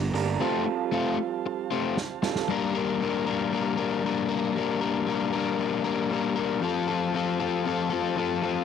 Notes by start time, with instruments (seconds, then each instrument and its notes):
Already playing: picked electric bass G1, clean electric guitar G2 D3 G3 A#3 D4 A#4, transistor combo organ G4 A#4 D5 A#5
0.13 picked electric bass G1, clean electric guitar D3 G3 A#3 D4 A#4, muted overdriven electric guitar stroke, open hi-hat
0.17 clean electric guitar G2
0.40 clean electric guitar F3 G3 C4 F4 A4, overdriven electric guitar A3 C4 F4, transistor combo organ C5 F5 A5
0.66 muted overdriven electric guitar stroke
0.92 overdriven electric guitar A3 C4 F4
1.19 muted overdriven electric guitar stroke
1.46 muted overdriven electric guitar stroke
1.71 overdriven electric guitar A3 C4 F4
1.97 muted overdriven electric guitar stroke, snare
2.23 clean electric guitar F3 G3 C4 F4 A4, muted overdriven electric guitar stroke, snare
2.36 snare
2.48 overdriven electric guitar G3 A#3 D4 A#4, transistor combo organ G4 A#4 D5 A#5
2.75 overdriven electric guitar A#3 D4 A#4
3.01 overdriven electric guitar G3 A#3 D4 A#4
3.27 overdriven electric guitar G3 A#3 D4 A#4
3.51 overdriven electric guitar G3 A#3 D4 A#4
3.77 overdriven electric guitar G3 A#3 D4 A#4
4.03 overdriven electric guitar G3 A#3 D4 A#4
4.29 overdriven electric guitar A#3 D4 A#4
4.55 overdriven electric guitar G3 A#3 D4 A#4
4.81 overdriven electric guitar A#3 D4 A#4
5.06 overdriven electric guitar G3 A#3 D4 A#4
5.33 overdriven electric guitar G3 A#3 D4 A#4
5.58 overdriven electric guitar G3 A#3 D4 A#4
5.84 overdriven electric guitar G3 A#3 D4 A#4
6.10 overdriven electric guitar G3 A#3 D4 A#4
6.36 overdriven electric guitar A#3 D4 A#4
6.61 overdriven electric guitar F3 C4 F4 A4, transistor combo organ A3 C5 F5 A5
6.88 overdriven electric guitar C4 F4 A4
7.14 overdriven electric guitar F3 C4 F4 A4
7.39 overdriven electric guitar F3 C4 F4 A4
7.64 overdriven electric guitar F3 C4 F4 A4
7.90 overdriven electric guitar F3 C4 F4 A4
8.16 overdriven electric guitar F3 C4 F4 A4
8.42 overdriven electric guitar C4 F4 A4